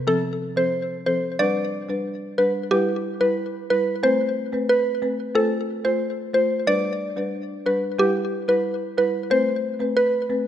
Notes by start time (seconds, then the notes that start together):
0.07 F3 C4 A4
0.56 F3 C4 A4 C5
1.06 F3 C4 A4 C5
1.39 G3 D4 B4 D5
1.89 G3 D4 B4
2.38 G3 D4 B4
2.71 G3 E4 G4 B4
3.20 G3 E4 B4
3.70 G3 E4 B4
4.03 A3 C4 B4 C5
4.53 A3 C4 B4
4.69 B4
5.02 A3 C4 B4
5.35 A3 F4 A4 C5
5.85 A3 F4 C5
6.34 A3 F4 C5
6.67 G3 D4 B4 D5
7.16 G3 D4 B4
7.66 G3 D4 B4
7.98 G3 E4 G4 B4
8.48 G3 E4 B4
8.97 G3 E4 B4
9.30 A3 C4 B4 C5
9.80 A3 C4 B4
9.97 B4
10.29 A3 C4 B4